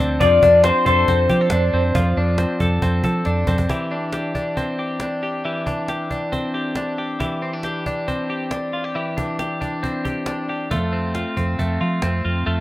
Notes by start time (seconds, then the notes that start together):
Already playing: F3 D4 A4
0.00 D2 C4
0.20 F2 F3 D5, cajon bass
0.43 F2 D4, cajon bass
0.64 C4 C5, cajon slap
0.85 F2 A4 C5, cajon bass, cajon slap
1.08 F2 C4, cajon bass
1.29 F3 G4, cajon bass
1.41 A4
1.50 F2 D4, cajon slap
1.73 F2 C4, cajon slap
1.95 F2 F3, cajon bass
2.17 F2 D4, cajon slap
2.38 C4, cajon slap
2.59 F2 A4, cajon bass, cajon slap
2.82 F2 C4, cajon bass
3.04 F3 A4, cajon bass
3.25 F2 D4, cajon slap
3.47 F2 C4, cajon bass
3.58 cajon bass
3.69 E3 G4, cajon bass
3.91 D4, cajon slap
4.12 G4, cajon slap
4.35 D4, cajon bass
4.57 C4, cajon bass
4.79 G4, cajon slap
5.00 D4, cajon slap
5.23 G4, cajon slap
5.45 E3 G4, cajon slap
5.66 D4, cajon bass
5.88 G4, cajon slap
6.11 D4, cajon bass
6.32 C4, cajon bass
6.54 G4, cajon slap
6.75 D4, cajon slap
6.98 G4, cajon slap
7.20 E3 G4, cajon bass
7.42 C4, cajon slap
7.53 D4
7.63 G4, cajon slap
7.86 D4, cajon bass
8.08 C4, cajon bass
8.30 G4, cajon slap
8.51 D4, cajon slap
8.73 F4, cajon slap
8.84 G4
8.95 E3 G4, cajon slap
9.17 D4, cajon bass
9.39 G4, cajon slap
9.61 D4, cajon bass, cajon slap
9.83 C4, cajon bass
10.05 G4, cajon bass
10.26 D4, cajon slap
10.49 G4, cajon slap
10.71 F2 A3 F4, cajon bass
10.93 C4, cajon slap
11.15 F4, cajon slap
11.37 F2 C4, cajon bass
11.59 F2 A3, cajon bass
11.81 F3 F4, cajon slap
12.02 F2 C4, cajon slap
12.25 F2 F4, cajon slap
12.46 F2 A3 F4, cajon slap